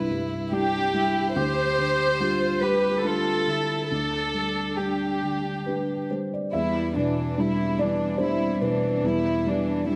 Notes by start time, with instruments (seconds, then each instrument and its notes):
Already playing: felt piano C2 G2 G3 D4 E4, cello E4, violin section B4
0.10 felt piano G2
0.51 felt piano G3 D4 E4, cello D4, violin section G4
0.94 felt piano G3, cello E4
1.36 felt piano D2, cello G4, violin section C5
1.78 felt piano D3
2.20 felt piano G3 D4 G4, cello F4
2.61 felt piano G3, cello G4, violin section B4
3.03 felt piano G3 D4 G4, cello F4, violin section A4
3.47 felt piano D3, cello E4
3.88 felt piano D2, violin section A4
3.94 cello D4
4.34 felt piano G3
4.78 felt piano G3 D4 G4, violin section G4
5.23 felt piano D3
5.66 felt piano G3 D4 G4 B4
6.11 felt piano G3 C5
6.34 felt piano D5
6.52 felt piano E2 E5, cello G3, violin section E4
6.95 felt piano B2, cello E3, violin section D4
7.37 cello G3, felt piano G3 D4 E4, violin section E4
7.78 cello E3, felt piano G3 D5, violin section D4
8.18 felt piano G3 D4 E4 C5, violin section E4
8.22 cello G3
8.61 felt piano B2 B4, cello E3, violin section D4
9.03 felt piano E2, cello G3, violin section E4
9.45 felt piano G3, violin section D4
9.50 cello E3
9.87 felt piano G3 D4 E4, cello G3, violin section E4